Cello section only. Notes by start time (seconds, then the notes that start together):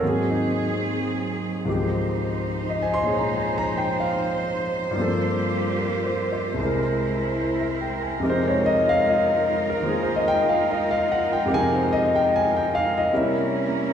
0.00 F#3 C4 G#4
1.65 F3 D#4 C5
4.95 G3 A#3 F4 G4
6.57 G#3 E4 A#4
8.21 D#4 F4
13.10 A#3 C#4 E4 A#4